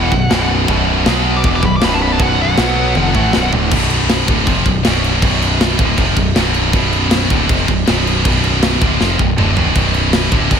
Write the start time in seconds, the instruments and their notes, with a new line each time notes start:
Already playing: picked electric bass E1, distorted electric guitar E2 B2 E3, lead electric guitar F#5
0.12 picked electric bass B0, distorted electric guitar B1 F#2, kick
0.30 picked electric bass B0, distorted electric guitar B1 F#2 B2, snare, china
0.67 picked electric bass B0, distorted electric guitar B1 F#2 B2, kick, china
1.06 picked electric bass B1, distorted electric guitar B2 F#3 B3, snare, china
1.37 lead electric guitar D6
1.44 picked electric bass E1, distorted electric guitar E2 B2 E3, kick, china
1.56 lead electric guitar D6
1.63 picked electric bass B0, distorted electric guitar B1 F#2, lead electric guitar B5, kick
1.76 lead electric guitar D6
1.82 picked electric bass B0, distorted electric guitar B1 F#2 B2, lead electric guitar B5, snare, china
1.94 lead electric guitar A5
2.02 lead electric guitar B5
2.12 lead electric guitar A5
2.19 picked electric bass B0, distorted electric guitar B1 F#2 B2, lead electric guitar F#5, kick, china
2.42 lead electric guitar F#5
2.57 picked electric bass B1, distorted electric guitar B2 F#3 B3, snare, china
2.95 picked electric bass F1, distorted electric guitar F2 C3 F3, high tom
3.14 picked electric bass A1, distorted electric guitar A2 E3 A3, kick
3.33 picked electric bass B0, distorted electric guitar B1 F#2 B2, snare
3.53 picked electric bass D1, distorted electric guitar D2 A2 D3, floor tom
3.71 picked electric bass B0, distorted electric guitar B1 F#2 B2, kick, crash
3.90 crash
4.09 snare, crash
4.27 picked electric bass D1, distorted electric guitar D2 A2 D3, kick, crash
4.47 picked electric bass F1, distorted electric guitar F2 C3 F3, kick, crash
4.65 picked electric bass B0, distorted electric guitar B1 F#2, kick, crash
4.83 picked electric bass B0, distorted electric guitar B1 F#2 B2, snare, crash
5.04 crash
5.21 picked electric bass B0, distorted electric guitar B1 F#2 B2, kick, crash
5.42 crash
5.61 snare, crash
5.78 picked electric bass D1, distorted electric guitar D2 A2 D3, kick, crash
5.97 picked electric bass F1, distorted electric guitar F2 C3 F3, kick, crash
6.16 picked electric bass B0, distorted electric guitar B1 F#2, kick, crash
6.36 picked electric bass B0, distorted electric guitar B1 F#2 B2, snare, crash
6.54 crash
6.73 picked electric bass B0, distorted electric guitar B1 F#2 B2, kick, crash
6.93 crash
7.11 snare, crash
7.30 picked electric bass D1, distorted electric guitar D2 A2 D3, kick, crash
7.49 picked electric bass F1, distorted electric guitar F2 C3 F3, kick, crash
7.68 picked electric bass B0, distorted electric guitar B1 F#2, kick, crash
7.86 picked electric bass B0, distorted electric guitar B1 F#2 B2, snare, crash
8.07 crash
8.24 picked electric bass B0, distorted electric guitar B1 F#2 B2, kick, crash
8.44 crash
8.63 snare, crash
8.81 picked electric bass D1, distorted electric guitar D2 A2 D3, kick, crash
9.00 picked electric bass F1, distorted electric guitar F2 C3 F3, snare
9.19 picked electric bass B0, distorted electric guitar B1 F#2, kick
9.38 picked electric bass D1, distorted electric guitar D2 A2 D3, mid tom
9.57 picked electric bass B0, distorted electric guitar B1 F#2 B2, floor tom
9.76 picked electric bass B0, distorted electric guitar B1 F#2 B2, kick, crash
9.94 crash
10.13 snare, crash
10.31 picked electric bass D1, distorted electric guitar D2 A2 D3, kick, crash
10.50 picked electric bass F1, distorted electric guitar F2 C3 F3, kick, crash